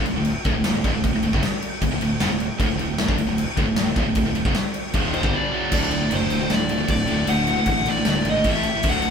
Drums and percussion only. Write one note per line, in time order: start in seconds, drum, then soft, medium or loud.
0.06 crash medium
0.25 crash medium
0.45 kick loud
0.45 crash medium
0.64 snare loud
0.64 crash medium
0.84 kick loud
0.84 crash medium
1.04 kick loud
1.04 crash medium
1.23 crash medium
1.33 kick loud
1.43 snare loud
1.43 crash medium
1.62 crash medium
1.82 kick medium
1.82 crash medium
2.01 crash medium
2.20 snare loud
2.20 crash medium
2.40 crash medium
2.60 kick loud
2.60 crash medium
2.79 crash medium
2.98 snare loud
2.98 crash medium
3.08 kick loud
3.18 crash medium
3.38 crash medium
3.57 kick loud
3.57 crash medium
3.76 snare loud
3.76 crash medium
3.96 kick loud
3.96 crash medium
4.15 kick medium
4.15 crash medium
4.35 crash medium
4.45 kick loud
4.55 snare loud
4.55 crash medium
4.74 crash medium
4.93 kick loud
4.93 crash medium
5.14 crash medium
5.23 kick loud
5.72 kick loud
5.72 crash loud
5.72 crash medium
5.91 crash medium
6.11 crash medium
6.30 crash medium
6.50 snare loud
6.50 crash medium
6.69 crash medium
6.88 kick medium
6.88 crash medium
7.07 crash medium
7.27 crash medium
7.47 crash medium
7.66 kick medium
7.66 crash medium
7.86 crash medium
8.05 snare loud
8.05 crash medium
8.25 crash medium
8.44 kick medium
8.44 crash medium
8.63 crash medium
8.83 kick loud
8.83 crash medium
9.02 crash medium